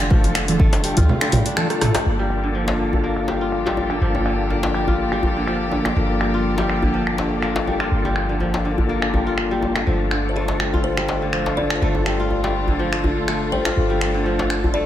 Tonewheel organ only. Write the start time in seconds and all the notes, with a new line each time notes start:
0.11 A3 D4 F4 A4
0.48 A3 D4 F4 A4
0.84 A3 D4 F4 A4
1.22 A3 D4 F4 A4
1.57 A3 D4 F4 A4
1.70 A3 D4 F4 A4
2.06 A#3 D4 F4 A4
5.96 A#3 D4 F4 A4
9.86 A3 D4 F4 A4
13.77 A3 D4 F4 A4